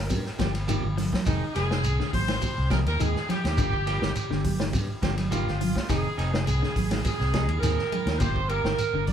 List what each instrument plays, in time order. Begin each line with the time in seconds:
Already playing: fingered electric bass G1, trumpet A#4, horn section A#4
0.10 fingered electric bass G2, kick, ride bell, high conga, shekere
0.25 muted clean electric guitar stroke, snare
0.39 fingered electric bass G1, clean electric guitar F3 A#3 D4 G4, kick, snare, ride bell, high conga, shekere
0.54 muted clean electric guitar stroke, snare, ride bell
0.67 clean electric guitar D#3 F3 A#3 D4 G4, ride bell, high conga, shekere
0.83 fingered electric bass G1, high conga
0.97 clean electric guitar F3, muted clean electric guitar stroke, snare, open hi-hat, low conga, shekere
1.13 muted clean electric guitar stroke, kick, snare, low conga
1.26 fingered electric bass F1, clean electric guitar D#3 G#3 C4 G#4, trumpet D#4, horn section D#4, kick, ride bell, shekere
1.54 fingered electric bass F1, clean electric guitar D#3 G#3 C4 G#4, horn section G#4, trumpet G#4, snare, ride bell, shekere
1.70 clean electric guitar D#3 G#3 C4 G#4, snare
1.84 fingered electric bass C2, muted clean electric guitar stroke, ride bell, shekere
2.00 clean electric guitar D3, muted clean electric guitar stroke, snare
2.13 fingered electric bass G#1, horn section C5, trumpet C5, muted clean electric guitar stroke, kick, open hi-hat, high conga, low conga, shekere
2.28 clean electric guitar D#3, muted clean electric guitar stroke, snare, ride bell
2.42 kick, ride bell, high conga, shekere
2.57 fingered electric bass C2, muted clean electric guitar stroke
2.70 clean electric guitar D#3 F3 G#3 C4 G#4, horn section A#4, trumpet A#4, kick, snare, ride bell, high conga, shekere
2.86 fingered electric bass D#2, horn section A#4, trumpet A#4, muted clean electric guitar stroke, snare, ride bell
2.99 fingered electric bass D#2, clean electric guitar D#3 G#3 C4 G#4, horn section G#4, trumpet G#4, muted clean electric guitar stroke, ride bell, high conga, shekere
3.16 snare
3.28 clean electric guitar F3, horn section G4, trumpet G4, muted clean electric guitar stroke, muted fingered electric bass stroke, snare, ride bell, low conga, shekere
3.44 fingered electric bass D#2, muted clean electric guitar stroke, snare, ride bell
3.57 fingered electric bass G1, clean electric guitar D3 F3 A#3 D4 G4, kick, ride bell, shekere
3.73 kick
3.86 clean electric guitar F3 A#3 D4 G4, snare, ride bell, shekere
4.01 fingered electric bass G1, clean electric guitar D#3 A#3 D4 G4, snare
4.15 muted clean electric guitar stroke, muted fingered electric bass stroke, ride bell, shekere
4.30 fingered electric bass G1, clean electric guitar D3, muted clean electric guitar stroke, snare, high conga
4.44 muted clean electric guitar stroke, kick, open hi-hat, high conga, low conga, shekere
4.60 clean electric guitar D#3, muted clean electric guitar stroke, snare
4.73 fingered electric bass G2, kick, ride bell, high conga, shekere
4.88 muted clean electric guitar stroke
5.02 fingered electric bass G1, clean electric guitar F3 A#3 D4 G4, kick, snare, ride bell, high conga, shekere
5.17 muted clean electric guitar stroke, snare, ride bell, low conga
5.31 clean electric guitar D#3 F3 A#3 D4 G4, trumpet F4, horn section F4, ride bell, high conga, shekere
5.47 fingered electric bass G1, snare
5.60 clean electric guitar F3, muted clean electric guitar stroke, open hi-hat, low conga, shekere
5.75 muted clean electric guitar stroke, kick, snare, high conga
5.89 fingered electric bass F1, clean electric guitar D#3 C4 D#4 G#4, horn section G#4, trumpet G#4, kick, snare, ride bell, shekere
6.17 fingered electric bass F1, clean electric guitar C4 D#4 G#4, snare, ride bell, shekere
6.33 clean electric guitar D#3 D#4 G#4, snare
6.45 fingered electric bass C2, horn section G#4, trumpet G#4, muted clean electric guitar stroke, ride bell, shekere
6.62 clean electric guitar D3, muted clean electric guitar stroke, snare
6.75 fingered electric bass G#1, muted clean electric guitar stroke, kick, open hi-hat, high conga, low conga, shekere
6.90 clean electric guitar D#3, muted clean electric guitar stroke, snare, ride bell, high conga
7.03 horn section G#4, trumpet G#4, kick, snare, ride bell, high conga, shekere
7.20 fingered electric bass C2, muted clean electric guitar stroke, snare
7.34 clean electric guitar F3 C4 D#4 G#4, kick, snare, ride bell, high conga, shekere
7.49 fingered electric bass D#2, muted clean electric guitar stroke, ride bell
7.59 fingered electric bass D#2, clean electric guitar D#3 C4, horn section A#4, trumpet A#4, snare, ride bell, shekere
7.63 clean electric guitar G#4, high conga
7.78 snare
7.91 clean electric guitar G#3, muted clean electric guitar stroke, muted fingered electric bass stroke, ride bell, low conga, shekere
8.06 fingered electric bass D#2, muted clean electric guitar stroke, snare, ride bell
8.18 fingered electric bass G1, clean electric guitar A#2 F3 A#3 D4 G4, horn section C5, trumpet C5, kick, ride bell, shekere
8.36 kick
8.49 clean electric guitar A#3 G4, horn section A#4, trumpet A#4, ride bell, shekere
8.64 fingered electric bass G1, clean electric guitar D#3 A#3 D4 G4, snare
8.78 muted fingered electric bass stroke, muted clean electric guitar stroke, ride bell, shekere
8.93 fingered electric bass G1, clean electric guitar D3, muted clean electric guitar stroke
9.07 horn section D5, trumpet D5, muted clean electric guitar stroke, kick, open hi-hat, high conga, low conga, shekere